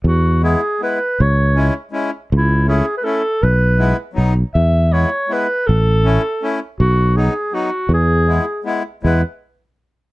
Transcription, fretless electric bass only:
\new Staff \with { instrumentName = "Fretless electric bass" } { \clef bass \time 3/4 \key e \major \tempo 4 = 161 e,2 r4 | cis,2 r4 | cis,2 r4 | b,,2 b,,4 |
e,2 r4 | a,,2 r4 | b,,2 r4 | e,2 r4 |
e,8 r2 r8 | }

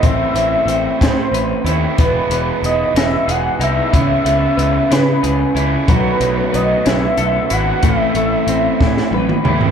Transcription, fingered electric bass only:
\new Staff \with { instrumentName = "Fingered electric bass" } { \clef bass \time 6/8 \key a \lydian \tempo 4. = 62 a,,8 a,,8 a,,8 a,8 a,,8 dis,8 | e,,8 e,,8 e,,8 e,,8 e,,8 c,8 | cis,8 cis,8 cis,8 cis8 cis,8 cis,8 | b,,8 b,,8 b,,8 b,,8 b,,8 gis,,8 |
a,,8 a,,8 a,,8 a,8 a,,8 dis,8 | }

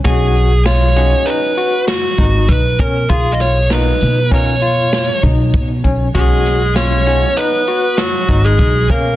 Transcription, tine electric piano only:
\new Staff \with { instrumentName = "Tine electric piano" } { \time 5/4 \key b \lydian \tempo 4 = 98 fis'4 eis'4 dis'8 fis'4 dis'4 cis'8 | eis'4 dis'4 cis'8 eis'4 dis'4 cis'8 | fis'4 eis'4 dis'8 fis'4 dis'4 cis'8 | }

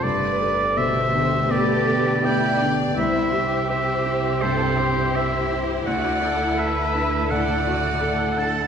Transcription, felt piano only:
\new Staff \with { instrumentName = "Felt piano" } { \time 4/4 \key g \major \tempo 4 = 83 g,8 a'8 b,8 d8 b8 a'8 b8 d8 | c,8 g'8 c''8 e'8 g,8 g'8 c''8 e'8 | d,8 e'8 a'8 d'8 a,8 e'8 a'8 d'8 | }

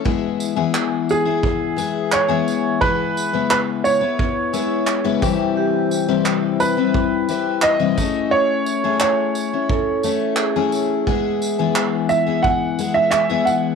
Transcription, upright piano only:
\new Staff \with { instrumentName = "Upright piano" } { \time 4/4 \key e \major \tempo 4 = 87 r4. gis'4. cis''4 | b'4 b'8 cis''2 r8 | r4. b'4. dis''4 | cis''4 cis''2~ cis''8 r8 |
r4. e''8 fis''8. e''16 e''8 fis''8 | }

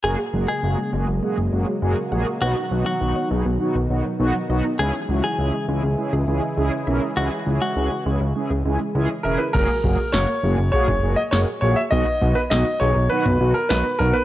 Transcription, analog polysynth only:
\new Staff \with { instrumentName = "Analog polysynth" } { \time 4/4 \key fis \mixolydian \tempo 4 = 101 <ais fis' gis'>16 r16 <ais fis' gis'>16 r16 <ais fis' gis'>16 r16 <ais fis' gis'>16 r16 <ais fis' gis'>16 r16 <ais fis' gis'>16 r16 <ais fis' gis'>16 r16 <ais fis' gis'>16 r16 | <b dis' fis'>16 r16 <b dis' fis'>16 r16 <b dis' fis'>16 r16 <b dis' gis'>16 r16 <b dis' fis'>16 r16 <b dis' fis'>16 r16 <b dis' fis'>16 r16 <b dis' fis'>16 r16 | <cis' e' gis'>16 r16 <cis' e' fis'>16 r16 <cis' e' gis'>16 r16 <cis' e' gis'>16 r16 <cis' e' gis'>16 r16 <cis' e' gis'>16 r16 <cis' e' gis'>16 r16 <cis' e' ais'>16 r16 | <cis' e' gis'>16 r16 <cis' e' gis'>16 r16 <cis' e' gis'>16 r16 <cis' e' gis'>16 r16 <cis' e' gis'>16 r16 <cis' e' gis'>16 r16 <cis' e' gis'>16 r16 <cis' e' gis'>16 r16 |
<ais fis' gis'>16 r16 <ais fis' gis'>16 r16 <ais fis' ais'>16 r16 <ais fis' gis'>16 r16 <ais fis' gis'>16 r16 <ais fis' gis'>16 r16 <ais fis' gis'>16 r16 <ais fis' gis'>16 r16 | <b dis' fis'>16 r16 <b dis' fis'>16 r16 <b dis' fis'>16 r16 <b dis' gis'>16 r16 <b dis' fis'>16 r16 <b dis' fis'>16 r16 <b dis' fis'>16 r16 <b dis' fis'>16 r16 | }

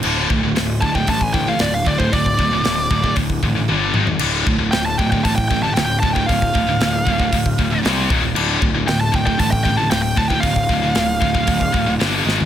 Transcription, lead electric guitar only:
\new Staff \with { instrumentName = "Lead electric guitar" } { \time 4/4 \key d \phrygian \tempo 4 = 116 r4. a''16 g''16 a''16 gis''16 g''16 f''16 d''16 f''16 d''16 c''16 | d''2 r2 | r4 g''16 a''16 g''16 g''16 a''16 g''16 g''16 a''16 g''16 g''16 a''16 g''16 | f''2. r4 |
r4 g''16 a''16 g''16 g''16 a''16 g''16 g''16 a''16 g''16 g''16 a''16 g''16 | f''2. r4 | }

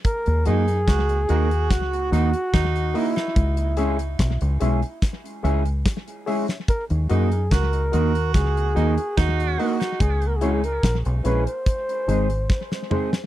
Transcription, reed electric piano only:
\new Staff \with { instrumentName = "Reed electric piano" } { \time 4/4 \key cis \dorian \tempo 4 = 72 r8 <fis' ais' dis''>16 r8 <ais' dis''>16 <fis' ais' dis''>16 r8. <fis' ais' dis''>16 r8. <fis' ais' dis''>16 <ais' dis''>16 | r8 <gis' cis'' e''>16 r8 <cis'' e''>16 <gis' cis'' e''>16 r8. <gis' cis'' e''>16 r8. <gis' cis'' e''>16 r16 | r8 <fis' ais' dis''>16 r8 <ais' dis''>16 <fis' ais' dis''>16 r8. <fis' ais' dis''>16 r8. <fis' ais' dis''>16 r16 | r8 <e' gis' cis''>16 r8 <gis' cis''>16 <e' gis' cis''>16 r8. <dis' gis' bis'>16 r8. <dis' gis' bis'>16 r16 | }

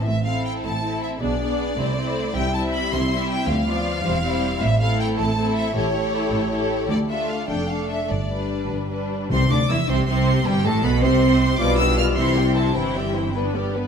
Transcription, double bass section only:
\new Staff \with { instrumentName = "Double bass section" } { \clef bass \time 6/8 \key a \minor \tempo 4. = 104 a,,4. a,,4. | b,,4. c,4. | c,4. c,4. | d,4. e,,4. |
\key c \major a,,4. a,,4. | a,,4. a,,4. | d,4. f,,4. | g,,4. g,,4. |
c,8 d,8 e,8 c,8 c,4 | g,,8 a,,8 b,,8 c,4. | b,,4. c,4. | g,,2~ g,,8 r8 | }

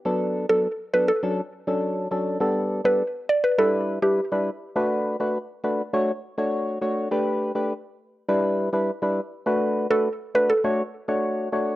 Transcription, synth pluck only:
\new Staff \with { instrumentName = "Synth pluck" } { \time 4/4 \key b \minor \tempo 4 = 102 r8. a'16 r8 b'16 a'16 r2 | r8. b'16 r8 d''16 b'16 a'16 r8 g'16 r4 | r1 | r1 |
r8. a'16 r8 b'16 a'16 r2 | }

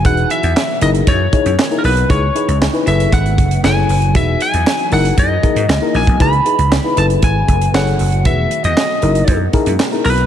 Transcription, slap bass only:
\new Staff \with { instrumentName = "Slap bass" } { \clef bass \time 4/4 \key fis \dorian \tempo 4 = 117 e,,8 r16 e,16 r8 fis,,8 fis,8 r16 fis,16 r8 b,,8 | cis,8 r16 cis,8 r16 fis,,8 gis,,8 fis,,8 fis,,8 fis,,8 | e,,8 r16 e,16 r8 fis,,8 fis,8 r16 gis,16 cis,16 r16 ais,,16 b,,16 | cis,8 r16 cis,8 r16 fis,,8 gis,,8 fis,,8 fis,,8 fis,,8 |
e,,8 r16 e,16 r8 fis,,8 fis,8 r16 fis,16 r8 b,,8 | }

